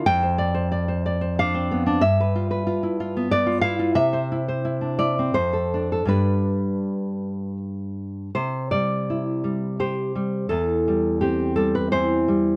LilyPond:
\new Staff \with { instrumentName = "Nylon-string guitar" } { \time 3/4 \key c \major \tempo 4 = 86 << { g''2 f''4 | e''2 d''8 f''8 | e''4. d''8 c''4 | b'2 r4 |
c''8 d''4. c''4 | a'4 g'8 a'16 b'16 c''4 | } \\ { f,16 c''16 d''16 c''16 d''16 c''16 d''16 c''16 d'16 c'16 b16 d'16 | g,16 b'16 f'16 b'16 f'16 e'16 f'16 b16 b'16 f'16 e'16 f'16 | c16 c''16 e'16 c''16 e'16 d'16 e'16 c'16 f,16 a'16 d'16 a'16 | <g, g d'>2. |
c8 g8 e'8 g8 g'8 g8 | e,8 g8 c'8 g8 e8 g8 | } >> }